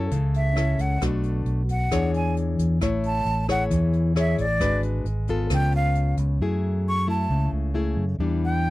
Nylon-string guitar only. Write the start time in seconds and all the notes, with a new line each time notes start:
Already playing: C#4 E4 A4
0.12 C#3
0.56 C#4 E4 A4
1.02 B2 A3 D4 F#4
1.92 E3 D4 G#4 C#5
2.82 A3 E4 C#5
3.49 E4 G#4 C#5
3.70 E3
4.16 E4 G#4 C#5
4.60 G#3 D4 F#4 B4
5.29 B3 F4 A4
5.52 C#3
6.41 F#3 A3 E4 G#4
7.07 A3 E4
7.31 C#3
7.74 A3 E4 G#4
8.20 E3 G3 D4